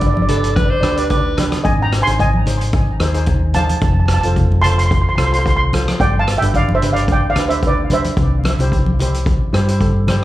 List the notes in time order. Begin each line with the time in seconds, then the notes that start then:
Already playing: G1 D4 G4 B4
0.01 kick, closed hi-hat
0.07 D5
0.14 D5, high conga
0.22 D5
0.28 D4 G4 A4 B4 D5, closed hi-hat, low conga
0.37 D5
0.44 D5, closed hi-hat
0.50 D5
0.55 B4 D5, kick, closed hi-hat, high conga
0.65 D5
0.70 C5 D5
0.81 D2 D4 G4 B4 D5, cross-stick, closed hi-hat
0.89 D5
0.96 D4 G4 B4 D5, closed hi-hat
1.04 D5
1.10 B4 D5, kick, closed hi-hat
1.17 D5
1.38 D4 G4 B4, cross-stick, closed hi-hat, high conga, low conga
1.52 cross-stick, closed hi-hat, high conga
1.64 G#1 D#5 G#5, kick, closed hi-hat
1.82 G5 A#5
1.92 cross-stick, closed hi-hat
2.02 G#5 C6
2.07 G#1 D#4 G#4 C5, closed hi-hat
2.19 D#5 G#5, kick, closed hi-hat
2.33 high conga
2.46 D#4 G#4 C5, closed hi-hat, low conga
2.61 closed hi-hat
2.73 kick, closed hi-hat
3.00 D#2 D#4 G#4 C5, cross-stick, closed hi-hat
3.14 D#4 G#4 C5, closed hi-hat
3.26 kick, closed hi-hat
3.54 D#4 G#4 C5 F5 A5, closed hi-hat, high conga, low conga
3.63 A5
3.69 A5, closed hi-hat, high conga
3.77 A5
3.81 F1 A5, kick, closed hi-hat
3.93 A5
4.00 A5
4.06 A5, cross-stick, closed hi-hat
4.14 A5
4.21 F1 F4 A4 A5, closed hi-hat
4.26 C5
4.36 kick, closed hi-hat
4.52 high conga
4.62 F4 A4 A5 C6, closed hi-hat, low conga
4.66 C5 C6
4.78 C6, closed hi-hat
4.86 C6
4.91 C6, kick, closed hi-hat
5.02 C6
5.09 C6
5.16 C2 F4 A4 C6, cross-stick, closed hi-hat
5.20 C5
5.25 C6
5.33 F4 A4 C5 C6, closed hi-hat
5.39 C6
5.46 C6, kick, closed hi-hat
5.56 C6
5.73 F4 A4 C5, cross-stick, closed hi-hat, high conga, low conga
5.88 cross-stick, closed hi-hat, high conga
6.00 G1 D5 G5, kick, closed hi-hat
6.19 F5 A5
6.28 cross-stick, closed hi-hat
6.38 G1 E5 G5
6.42 D4 G4 B4, closed hi-hat
6.54 D5 F5, kick, closed hi-hat
6.69 high conga
6.75 C5 E5
6.82 D4 G4 B4, closed hi-hat, low conga
6.93 D5 F5, closed hi-hat
7.08 D5, kick, closed hi-hat
7.12 G5
7.30 D5 F5
7.36 D2 D4 G4 B4, cross-stick, closed hi-hat
7.48 D4 G4 B4 C5 E5, closed hi-hat
7.63 B4, kick, closed hi-hat
7.67 D5
7.90 D4 G4 B4 C5 E5, closed hi-hat, high conga, low conga
8.04 closed hi-hat, high conga
8.17 C2, kick, closed hi-hat
8.44 cross-stick, closed hi-hat, high conga
8.59 C2 E4 G4 C5, closed hi-hat, low conga
8.72 kick, closed hi-hat
8.86 high conga
8.99 E4 G4 C5, closed hi-hat, low conga
9.14 closed hi-hat
9.26 kick, closed hi-hat
9.53 G2 E4 G4 C5, cross-stick, closed hi-hat
9.68 E4 G4 C5, closed hi-hat
9.81 A4, kick, closed hi-hat
10.07 E4 G4 C5, cross-stick, closed hi-hat, high conga, low conga